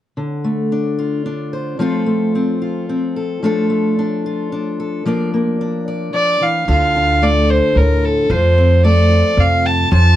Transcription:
0.17 1.79 D3 medium
0.44 1.79 A3 soft
0.72 1.25 D4 soft
0.99 1.81 F4 soft
1.26 1.77 D4 soft
1.53 1.77 C5 soft
1.79 3.42 F3 medium
1.79 2.06 A3 soft
1.79 2.34 C4 soft
1.79 2.61 F4 soft
1.79 3.15 A4 medium
2.06 3.39 A3 soft
2.35 2.88 C4 soft
2.62 3.44 F4 soft
2.89 3.43 C4 soft
3.16 3.43 A4 soft
3.43 5.05 F3 medium
3.43 3.69 A3 soft
3.43 3.98 D4 soft
3.43 4.25 F4 soft
3.43 4.79 A4 medium
3.70 5.02 A3 soft
3.99 4.52 D4 soft
4.26 6.44 F4 soft
4.52 5.07 D4 soft
4.80 5.06 A4 soft
5.06 6.13 F3 medium
5.06 5.32 A#3 soft
5.06 5.60 D4 medium
5.06 5.87 D5 medium
5.34 6.65 A#3 soft
5.61 6.65 D4 soft
5.88 6.65 D5 soft
6.14 6.40 F3 soft
6.14 6.44 D5 medium
6.41 6.68 E3 soft
6.41 6.69 F5 medium
6.68 7.59 D2 medium
6.68 8.29 D3 medium
6.68 7.49 F4 medium
6.68 7.25 F5 medium
6.96 8.27 D4 soft
7.22 8.84 A3 soft
7.22 8.84 A4 medium
7.22 7.52 D5 medium
7.49 8.30 F4 soft
7.49 7.79 C5 medium
7.75 8.21 D2 medium
7.75 8.30 A2 soft
7.75 8.06 A#4 medium
8.05 8.32 A4 medium
8.30 9.21 F2 medium
8.30 9.91 F3 medium
8.30 9.11 F4 medium
8.30 8.84 C5 medium
8.58 9.92 C4 soft
8.84 9.89 A3 medium
8.84 10.16 A4 medium
8.84 9.42 D5 medium
9.12 9.92 F4 soft
9.37 9.83 F2 medium
9.37 9.88 C3 soft
9.37 9.67 F5 medium
9.66 9.92 A5 medium
9.92 10.16 F2 medium
9.92 10.16 F3 medium
9.92 10.16 F4 medium
9.92 10.16 A5 medium

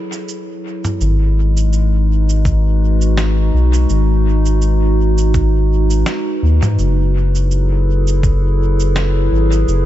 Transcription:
0.00 1.01 F#3 medium
0.00 1.01 E4 medium
0.00 3.33 G#4 medium
0.00 1.01 A4 medium
0.00 1.01 B4 medium
0.12 cabasa medium
0.28 cabasa soft
0.85 mid tom medium
0.85 cabasa medium
1.01 3.51 G#1 loud
1.01 6.79 G#3 medium
1.01 cabasa soft
1.30 6.79 D#4 medium
1.57 cabasa medium
1.73 cabasa soft
1.93 9.86 B4 medium
2.00 9.12 F#4 medium
2.29 cabasa medium
2.45 kick loud
2.45 cabasa soft
3.01 cabasa medium
3.17 snare medium
3.17 cabasa soft
3.54 3.86 B1 loud
3.74 cabasa medium
3.89 6.04 G#1 loud
3.89 cabasa soft
4.46 cabasa medium
4.62 cabasa soft
5.18 cabasa medium
5.34 kick loud
5.34 cabasa soft
5.90 cabasa medium
6.06 snare medium
6.06 cabasa soft
6.43 6.61 D#2 medium
6.63 6.77 G#2 medium
6.63 mid tom medium
6.63 cabasa medium
6.79 9.29 F#1 loud
6.79 9.86 F#3 medium
6.79 cabasa soft
7.12 9.86 A4 medium
7.17 9.86 E4 medium
7.17 9.86 G#4 medium
7.35 cabasa medium
7.51 cabasa soft
8.07 cabasa medium
8.23 kick loud
8.23 cabasa soft
8.80 cabasa medium
8.96 snare medium
8.96 cabasa soft
9.32 9.64 G#1 loud
9.52 cabasa medium
9.68 9.86 F#1 loud
9.68 cabasa soft

